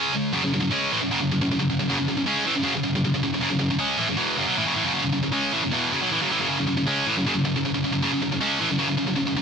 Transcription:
distorted electric guitar
Already playing: C#3 G#3 C#4
0.13 C#3 G#3
0.33 F#2 C#3
0.43 F#2 C#3
0.54 F#2 C#3
0.61 F#2 C#3
0.71 C#3 G#3 C#4
0.92 A2 E3
1.01 F#2 C#3
1.11 F#2 C#3
1.21 F#2 C#3
1.32 F#2 C#3
1.41 F#2 C#3
1.51 F#2 C#3
1.59 F#2 C#3
1.69 F#2 C#3
1.79 F#2 C#3
1.90 F#2 C#3
1.99 F#2 C#3
2.08 F#2 C#3
2.17 F#2 C#3
2.27 C#3 G#3 C#4
2.46 A2 E3
2.56 F#2 C#3
2.64 F#2 C#3
2.75 F#2 C#3
2.84 F#2 C#3
2.95 F#2 C#3
3.04 F#2 C#3
3.14 F#2 C#3
3.23 F#2 C#3
3.34 F#2 C#3
3.41 F#2 C#3
3.50 F#2 C#3
3.59 F#2 C#3
3.70 F#2 C#3
3.79 C#3 G#3 C#4
3.98 A2 E3
4.08 F#2 C#3
4.17 E2 B2 E3
4.38 F#2 C#3
4.47 B2 F#3
4.57 A2 E3
4.65 F#2 C#3
4.75 A2 E3
4.84 F#2 C#3
4.93 F#2 C#3
5.03 F#2 C#3
5.13 F#2 C#3
5.23 F#2 C#3
5.32 C#3 G#3 C#4
5.53 A2 E3
5.64 F#2 C#3
5.72 E2 B2 E3
5.93 F#2 C#3
6.02 B2 F#3
6.12 A2 E3
6.22 F#2 C#3
6.30 A2 E3
6.40 F#2 C#3
6.49 F#2 C#3
6.59 F#2 C#3
6.67 F#2 C#3
6.77 F#2 C#3
6.87 C#3 G#3 C#4
7.06 A2 E3
7.17 F#2 C#3
7.27 F#2 C#3
7.35 F#2 C#3
7.45 F#2 C#3
7.56 F#2 C#3
7.65 F#2 C#3
7.74 F#2 C#3
7.84 F#2 C#3
7.92 F#2 C#3
8.03 F#2 C#3
8.13 F#2 C#3
8.22 F#2 C#3
8.32 F#2 C#3
8.40 C#3 G#3 C#4
8.60 A2 E3
8.70 F#2 C#3
8.79 F#2 C#3
8.88 F#2 C#3
8.97 F#2 C#3
9.07 F#2 C#3
9.16 F#2 C#3
9.27 F#2 C#3
9.37 F#2 C#3

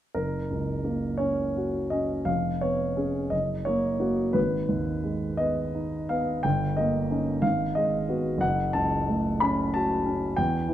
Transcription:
grand piano
0.14 F#1 A#4
0.51 C#2
0.84 A#3
1.17 C#4 C#5
1.57 F#4
1.90 C#4 D#5
2.25 F1 F5
2.61 B3 C#5
2.97 C#4 G#4
3.30 F#1 D#5
3.65 A#3 C#5
4.00 A#3 F#4
4.33 G#1 B4
4.69 D#2
5.04 G#3
5.37 B3 D#5
5.75 D#4
6.09 B3 F5
6.43 G1 G5
6.77 A#3 D#5
7.11 C#4 D#4
7.42 G#1 F5
7.75 G#3 D#5
8.09 B3 F#4
8.38 F#1 F#5
8.73 C#2 A5
9.09 A3
9.40 C#4 B5
9.74 F#4 A5
10.06 C#4
10.37 E2 G5
10.69 E3

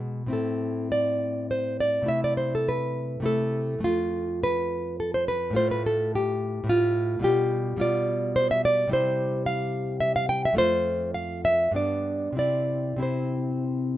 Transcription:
nylon-string guitar
Already playing: G#3 G#4
0.00 B2
0.26 A2 C4 E4
0.33 A4
0.92 D5
1.51 C5
1.80 D5
2.02 C3 A3 E4
2.08 E5
2.24 D5
2.37 C5
2.55 A4
2.69 B4
3.20 C3 A3 E4
3.26 A4
3.79 F2 A3
3.84 F4
4.44 B4
5.00 A4
5.14 C5
5.28 B4
5.51 A2 A3 F4
5.56 C5
5.71 B4
5.86 A4
6.15 G4
6.64 A2 A3
6.69 F4
7.19 B2 G3 F4
7.24 G4
7.76 B2 G3 F4
7.81 D5
8.36 C5
8.51 E5
8.65 D5
8.88 C3 G3 E4
8.93 C5
9.46 F5
10.00 E5
10.16 F5
10.29 G5
10.45 E5
10.53 F2 A3 F4
10.58 C5
11.14 F5
11.45 E5
11.71 G2 B3 D4
11.76 D5
12.32 C3 C4
12.37 E4 D5
12.96 C3 C4 E4
13.03 C5

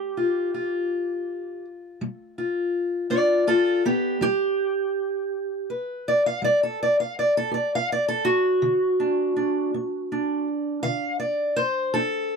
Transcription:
steel-string acoustic guitar
Already playing: G3 G4
0.17 F4
0.54 F4
2.01 G3
2.38 F4
3.10 D4 F4 D5
3.47 F4 A4
3.85 B3 G4
4.21 G3 G4
5.70 B4
6.08 D5
6.26 F5
6.42 G3 D5
6.63 A4
6.83 D5
7.00 F5
7.19 D5
7.37 A4
7.51 G4 D5
7.75 F5
7.92 D5
8.08 A4
8.25 F#4
8.62 D3
9.00 D4
9.36 D4
9.74 D4
10.12 D4
10.83 D3 F5
11.20 D5
11.56 C5
11.94 D4 A4

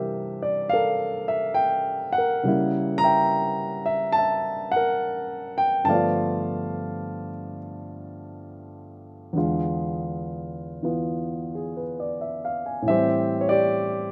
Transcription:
grand piano
Already playing: C3 E3 G3 A#3 C4 D4 G4 A#4 E5
0.43 D5
0.69 A4 A#4 F5
1.28 E5
1.54 G5
2.13 F#5
2.18 A#4
2.43 C#3 G3 A#3
2.48 E4
2.98 A#5
3.04 E5 G5
3.86 E5
4.12 A5
4.18 E5
4.72 F#5
4.76 A#4
5.58 G5
5.84 G2 D3 F3 A5
5.89 A3 B3 D5 F5
5.95 F4
9.33 E2 D3 G#3
9.38 F4
10.83 E3 B3 F4
11.55 G#4
11.77 B4
12.00 D5
12.21 E5
12.45 F5
12.66 G#5
12.82 A2 E3
12.88 G3 G4 C5 E5
12.93 C4
13.41 C#5
13.49 G4 D5

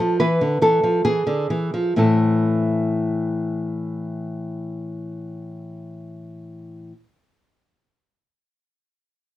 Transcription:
nylon-string guitar
Already playing: A4
0.00 F3
0.20 E3 B4
0.41 D3
0.62 E3 A4
0.83 F3
1.05 E3 G#4
1.27 D3
1.50 E3
1.74 F3
1.96 A2 E3 C4 E4 A4

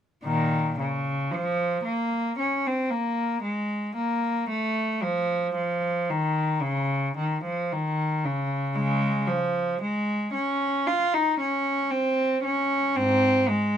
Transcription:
cello
0.24 A#2 D#3
0.79 C#3
1.31 F3
1.84 A#3
2.39 C#4
2.67 C4
2.90 A#3
3.43 G#3
3.96 A#3
4.49 A3
5.03 F3
5.55 F3
6.10 D#3
6.62 C#3
7.18 D#3
7.44 F3
7.73 D#3
8.25 C#3
8.75 C#3 G#3
9.28 F3
9.82 G#3
10.34 C#4
10.87 F4
11.14 D#4
11.40 C#4
11.90 C4
12.43 C#4
12.95 G#2 C4
13.49 G#3

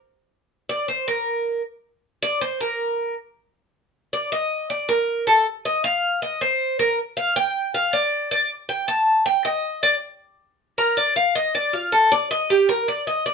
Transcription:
cuban tres
0.69 D5
0.88 C5
1.08 A#4
2.23 D5
2.41 C5
2.61 A#4
4.13 D5
4.32 D#5
4.70 D5
4.89 A#4
5.27 A4
5.65 D#5
5.84 F5
6.22 D#5
6.41 C5
6.79 A#4
7.17 F5
7.36 G5
7.74 F5
7.93 D5
8.31 D5
8.69 G5
8.88 A5
9.26 G5
9.45 D#5
9.83 D5
10.78 A#4
10.97 D5
11.16 F5
11.35 D#5
11.55 D5
11.73 F4
11.92 A4
12.12 D5
12.31 D#5
12.50 G4
12.69 A#4
12.88 D5
13.07 D#5
13.26 D5

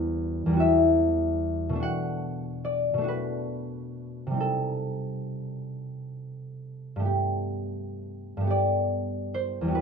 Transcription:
harp
Already playing: E2 G3 B3 F#4 G4 B4
0.46 E2 G3
0.53 B3 F#4
0.60 E5
1.69 B2 A3
1.75 D4
1.80 F#4 F#5
2.65 D5
2.94 B2
2.98 A3 D4
3.04 F#4
3.08 B4
4.27 C3
4.31 G3 C4
4.37 D#4 A4
6.96 G2 A3
7.02 B3 G4
8.37 G2 A3
8.44 B3 G4
8.50 D5
9.34 C5
9.61 E2 G3
9.68 B3 F#4
9.75 B4

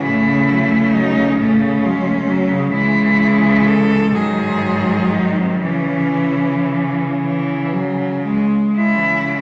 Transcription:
cello
Already playing: C#3
0.04 A2 A3 E4
0.27 C#3
0.48 F#3
0.71 A3
0.93 F#3 D#4
1.16 C#3
1.39 A2 A3 C#4
1.60 C#3
1.84 F#3 G#3
2.06 A3
2.28 F#3
2.51 C#3
2.72 C#3 E3 G#3 E4
3.67 A4
4.14 G#2 D#3 F#3 G#4
5.12 D#4
5.38 C4
5.63 C#3 E3 C#4
7.22 E3
7.72 F#3
8.25 G#3
8.73 C#3 G#3 E4
8.97 E3
9.20 G#3

